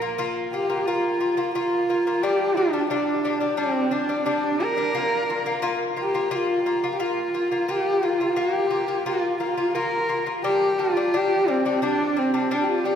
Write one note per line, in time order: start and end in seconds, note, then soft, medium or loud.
0.00 0.15 A#3 medium
0.00 0.15 F4 medium
0.00 0.14 A#4 medium
0.18 0.46 A#3 medium
0.18 0.46 F4 loud
0.53 0.66 A#3 medium
0.53 0.67 F4 medium
0.53 0.87 G4 medium
0.70 0.83 A#3 medium
0.70 0.83 F4 medium
0.85 1.14 A#3 medium
0.85 1.54 F4 medium
0.85 1.14 F4 medium
1.20 1.34 A#3 medium
1.20 1.34 F4 medium
1.37 1.51 A#3 medium
1.37 1.51 F4 medium
1.54 1.82 A#3 medium
1.54 2.24 F4 medium
1.54 1.82 F4 medium
1.90 2.03 A#3 medium
1.90 2.03 F4 medium
2.07 2.20 A#3 medium
2.07 2.20 F4 medium
2.22 2.50 G3 medium
2.22 2.50 D4 medium
2.22 2.58 G4 medium
2.57 2.70 G3 medium
2.57 2.90 D4 medium
2.57 2.71 D4 medium
2.73 2.87 G3 medium
2.73 2.87 D4 medium
2.90 3.18 G3 medium
2.90 3.60 D4 medium
2.90 3.18 D4 medium
3.25 3.39 G3 medium
3.25 3.39 D4 medium
3.40 3.55 G3 medium
3.40 3.55 D4 medium
3.57 3.85 G3 medium
3.57 3.94 C4 medium
3.57 3.86 D4 medium
3.91 4.06 G3 medium
3.91 4.06 D4 medium
3.91 4.27 D4 medium
4.09 4.23 G3 medium
4.09 4.23 D4 medium
4.26 4.54 G3 medium
4.26 4.54 D4 medium
4.26 4.65 D4 medium
4.60 4.74 G3 medium
4.60 4.74 D4 medium
4.60 5.65 A#4 medium
4.77 4.92 G3 medium
4.77 4.92 D4 medium
4.95 5.22 A#3 medium
4.95 5.22 F4 medium
5.30 5.43 A#3 medium
5.30 5.43 F4 medium
5.46 5.60 A#3 medium
5.46 5.60 F4 medium
5.62 5.90 A#3 medium
5.62 5.91 F4 loud
5.96 6.11 A#3 medium
5.96 6.11 F4 medium
6.01 6.37 G4 medium
6.14 6.28 A#3 medium
6.14 6.29 F4 medium
6.31 6.59 A#3 medium
6.31 6.59 F4 loud
6.35 6.94 F4 medium
6.66 6.80 A#3 medium
6.66 6.80 F4 medium
6.84 6.97 A#3 medium
6.84 6.97 F4 medium
6.94 7.02 G4 medium
7.00 7.28 A#3 medium
7.00 7.28 F4 medium
7.00 7.72 F4 medium
7.34 7.48 A#3 medium
7.34 7.48 F4 medium
7.51 7.66 A#3 medium
7.51 7.66 F4 medium
7.68 7.96 A#3 medium
7.68 7.96 F4 medium
7.68 8.06 G4 medium
8.02 8.17 A#3 medium
8.02 8.17 F4 medium
8.02 8.41 F4 medium
8.20 8.34 A#3 medium
8.20 8.34 F4 medium
8.36 8.65 A#3 medium
8.36 8.65 F4 medium
8.36 9.07 G4 medium
8.70 8.85 A#3 medium
8.70 8.85 F4 medium
8.88 9.02 A#3 medium
8.88 9.02 F4 medium
9.06 9.34 A#3 medium
9.06 9.34 F4 medium
9.06 9.39 F4 medium
9.40 9.54 A#3 medium
9.40 9.54 F4 medium
9.40 9.76 F4 medium
9.57 9.71 A#3 medium
9.57 9.71 F4 medium
9.74 10.03 A#3 medium
9.74 10.03 F4 medium
9.74 10.26 A#4 medium
10.09 10.23 A#3 medium
10.09 10.23 F4 medium
10.26 10.40 A#3 medium
10.26 10.40 F4 medium
10.43 10.72 G3 medium
10.43 10.71 D4 medium
10.43 10.80 G4 loud
10.79 10.92 G3 medium
10.79 10.92 D4 medium
10.79 11.17 F4 medium
10.97 11.10 G3 medium
10.97 11.10 D4 medium
11.14 11.41 G3 medium
11.14 11.41 D4 medium
11.14 11.50 G4 loud
11.48 11.61 G3 medium
11.48 11.85 C4 medium
11.48 11.61 D4 medium
11.65 11.79 G3 medium
11.65 11.79 D4 medium
11.82 12.09 G3 medium
11.82 12.10 D4 medium
11.82 12.20 D4 medium
12.16 12.30 G3 medium
12.16 12.54 C4 medium
12.16 12.30 D4 medium
12.34 12.47 G3 medium
12.34 12.47 D4 medium
12.51 12.78 G3 medium
12.51 12.78 D4 loud
12.51 12.65 D4 medium
12.63 12.71 G4 medium
12.70 12.86 F4 medium
12.84 12.95 G3 medium
12.84 12.95 D4 medium
12.84 12.95 G4 medium